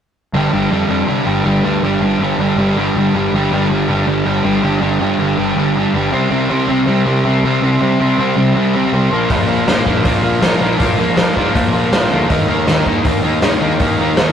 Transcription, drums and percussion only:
9.30 kick loud
9.30 open hi-hat soft
9.68 snare loud
9.68 open hi-hat medium
9.86 kick medium
10.05 kick loud
10.05 open hi-hat medium
10.42 snare loud
10.42 open hi-hat medium
10.80 kick loud
10.80 open hi-hat medium
11.17 snare loud
11.17 open hi-hat medium
11.37 kick medium
11.55 kick loud
11.55 open hi-hat medium
11.92 snare loud
11.92 open hi-hat medium
12.30 kick loud
12.30 open hi-hat soft
12.67 snare loud
12.67 open hi-hat soft
12.86 kick medium
13.05 kick loud
13.05 open hi-hat medium
13.42 snare loud
13.42 open hi-hat medium
13.80 kick loud
13.80 open hi-hat soft
14.17 snare loud
14.17 open hi-hat medium

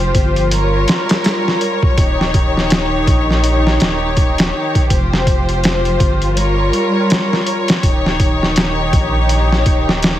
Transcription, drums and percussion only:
0.00 closed hi-hat soft
0.15 kick medium
0.15 closed hi-hat medium
0.36 closed hi-hat soft
0.51 closed hi-hat loud
0.88 snare medium
0.88 closed hi-hat medium
1.09 snare loud
1.09 closed hi-hat medium
1.24 snare loud
1.24 closed hi-hat medium
1.48 snare soft
1.61 closed hi-hat medium
1.83 kick loud
1.98 kick loud
1.98 closed hi-hat medium
2.21 snare soft
2.34 kick loud
2.34 closed hi-hat medium
2.57 snare soft
2.70 snare loud
2.70 closed hi-hat medium
3.07 kick loud
3.07 closed hi-hat medium
3.31 snare soft
3.44 closed hi-hat medium
3.67 snare medium
3.80 snare loud
3.80 closed hi-hat medium
4.17 kick medium
4.17 closed hi-hat medium
4.38 snare loud
4.38 closed hi-hat medium
4.75 kick medium
4.75 closed hi-hat medium
4.90 kick loud
4.90 closed hi-hat medium
5.13 snare medium
5.27 kick medium
5.27 closed hi-hat medium
5.49 closed hi-hat soft
5.64 snare loud
5.64 closed hi-hat medium
5.85 closed hi-hat soft
6.00 kick loud
6.00 closed hi-hat medium
6.22 closed hi-hat soft
6.37 closed hi-hat medium
6.73 closed hi-hat medium
7.10 snare loud
7.10 closed hi-hat medium
7.33 snare soft
7.47 closed hi-hat medium
7.68 snare loud
7.68 closed hi-hat medium
7.83 kick loud
7.83 closed hi-hat medium
8.06 snare soft
8.20 kick medium
8.20 closed hi-hat medium
8.43 snare soft
8.56 snare loud
8.56 closed hi-hat medium
8.93 kick loud
8.93 closed hi-hat medium
9.29 closed hi-hat medium
9.52 snare soft
9.66 kick medium
9.66 closed hi-hat medium
9.89 snare medium
10.02 snare loud
10.02 closed hi-hat medium

